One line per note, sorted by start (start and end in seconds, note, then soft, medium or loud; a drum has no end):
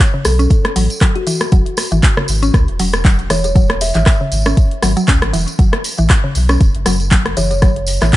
0.00 kick loud
0.00 clap loud
0.00 closed hi-hat medium
0.00 tambourine soft
0.14 0.25 C#3 medium
0.25 0.47 B1 medium
0.25 0.47 A4 medium
0.25 cross-stick medium
0.25 open hi-hat medium
0.25 tambourine loud
0.39 0.49 C#4 medium
0.39 closed hi-hat soft
0.39 tambourine medium
0.50 kick loud
0.50 closed hi-hat medium
0.50 tambourine soft
0.65 cross-stick loud
0.65 closed hi-hat soft
0.76 0.88 A1 medium
0.76 0.84 F#3 medium
0.76 open hi-hat loud
0.76 tambourine medium
0.90 closed hi-hat soft
0.90 tambourine medium
1.01 1.09 F#3 medium
1.01 kick loud
1.01 cross-stick medium
1.01 clap loud
1.01 closed hi-hat medium
1.15 1.52 F#4 medium
1.15 closed hi-hat soft
1.27 1.40 E3 medium
1.27 open hi-hat medium
1.27 tambourine loud
1.41 cross-stick medium
1.41 closed hi-hat soft
1.41 tambourine soft
1.52 1.64 E1 loud
1.52 1.60 F#3 medium
1.52 kick loud
1.52 closed hi-hat medium
1.52 tambourine soft
1.66 closed hi-hat soft
1.77 cross-stick medium
1.77 open hi-hat medium
1.77 tambourine loud
1.92 2.01 G#1 loud
1.92 1.98 E3 medium
1.92 closed hi-hat soft
1.92 tambourine medium
2.03 kick loud
2.03 clap loud
2.03 closed hi-hat medium
2.03 tambourine soft
2.17 2.28 C#3 medium
2.17 cross-stick loud
2.28 2.51 G#1 medium
2.28 open hi-hat medium
2.28 tambourine loud
2.43 2.53 C#4 medium
2.43 closed hi-hat soft
2.43 tambourine medium
2.54 2.66 C#2 loud
2.54 kick loud
2.54 cross-stick medium
2.54 closed hi-hat medium
2.54 tambourine soft
2.68 2.78 E1 medium
2.68 closed hi-hat soft
2.79 3.28 E1 medium
2.79 2.87 F#3 medium
2.79 open hi-hat medium
2.79 tambourine loud
2.93 cross-stick loud
2.93 closed hi-hat soft
2.93 tambourine medium
3.05 3.12 F#3 medium
3.05 kick loud
3.05 clap medium
3.05 closed hi-hat medium
3.05 tambourine soft
3.19 closed hi-hat soft
3.30 3.92 E1 medium
3.30 3.43 E3 medium
3.30 3.39 C#5 medium
3.30 cross-stick medium
3.30 open hi-hat loud
3.30 tambourine loud
3.44 3.52 C#5 medium
3.44 closed hi-hat soft
3.44 tambourine medium
3.55 3.63 F#3 medium
3.55 kick loud
3.55 closed hi-hat medium
3.55 tambourine soft
3.70 cross-stick loud
3.70 closed hi-hat soft
3.81 3.90 E5 medium
3.81 open hi-hat medium
3.81 tambourine loud
3.94 4.05 G#1 loud
3.94 4.01 E3 medium
3.94 4.02 E5 medium
3.94 clap soft
3.94 closed hi-hat soft
3.94 tambourine soft
4.06 kick loud
4.06 cross-stick medium
4.06 clap loud
4.06 closed hi-hat medium
4.06 tambourine soft
4.21 4.31 C#3 medium
4.32 4.54 G#1 medium
4.32 open hi-hat medium
4.32 tambourine loud
4.46 4.56 C#4 medium
4.46 cross-stick loud
4.46 closed hi-hat soft
4.46 tambourine medium
4.57 kick loud
4.57 closed hi-hat medium
4.57 tambourine soft
4.71 closed hi-hat soft
4.83 4.95 G#1 medium
4.83 4.90 F#3 medium
4.83 cross-stick medium
4.83 open hi-hat medium
4.83 tambourine loud
4.97 5.03 F#3 medium
4.97 closed hi-hat soft
4.97 tambourine medium
5.08 5.20 C#2 medium
5.08 5.21 C#4 medium
5.08 kick loud
5.08 clap loud
5.08 closed hi-hat medium
5.08 tambourine soft
5.22 5.32 G#1 medium
5.22 cross-stick loud
5.22 closed hi-hat soft
5.33 5.46 E1 medium
5.33 5.46 E3 medium
5.33 open hi-hat medium
5.33 tambourine loud
5.48 closed hi-hat soft
5.48 tambourine medium
5.59 5.71 F#1 loud
5.59 5.67 F#3 medium
5.59 kick loud
5.59 closed hi-hat medium
5.59 tambourine soft
5.73 cross-stick loud
5.73 closed hi-hat soft
5.84 open hi-hat medium
5.84 tambourine medium
5.98 6.08 A1 loud
5.98 6.05 E3 medium
5.98 closed hi-hat soft
5.98 tambourine medium
6.10 kick loud
6.10 cross-stick medium
6.10 clap loud
6.10 closed hi-hat medium
6.10 tambourine soft
6.24 6.35 C#3 medium
6.35 6.58 B1 medium
6.35 open hi-hat medium
6.35 tambourine medium
6.49 6.60 C#4 medium
6.49 cross-stick medium
6.49 closed hi-hat soft
6.49 tambourine medium
6.61 6.73 E1 loud
6.61 kick loud
6.61 closed hi-hat medium
6.61 tambourine soft
6.75 6.85 F#1 medium
6.75 closed hi-hat soft
6.86 7.35 F#1 medium
6.86 6.94 F#3 medium
6.86 cross-stick medium
6.86 open hi-hat medium
6.86 tambourine loud
7.00 closed hi-hat soft
7.00 tambourine medium
7.11 7.19 F#3 medium
7.11 kick loud
7.11 clap loud
7.11 closed hi-hat medium
7.11 tambourine soft
7.26 cross-stick medium
7.26 closed hi-hat soft
7.37 7.99 F#1 medium
7.37 7.50 E3 medium
7.37 7.46 C#5 medium
7.37 open hi-hat medium
7.37 tambourine loud
7.51 7.58 C#5 medium
7.51 closed hi-hat soft
7.51 tambourine medium
7.62 7.70 F#3 medium
7.62 kick loud
7.62 cross-stick medium
7.62 closed hi-hat medium
7.62 tambourine soft
7.76 closed hi-hat soft
7.87 open hi-hat medium
7.87 tambourine loud
8.01 8.12 A1 loud
8.01 8.08 E3 medium
8.01 cross-stick medium
8.01 clap soft
8.01 closed hi-hat soft
8.01 tambourine soft
8.13 kick loud
8.13 clap loud
8.13 closed hi-hat medium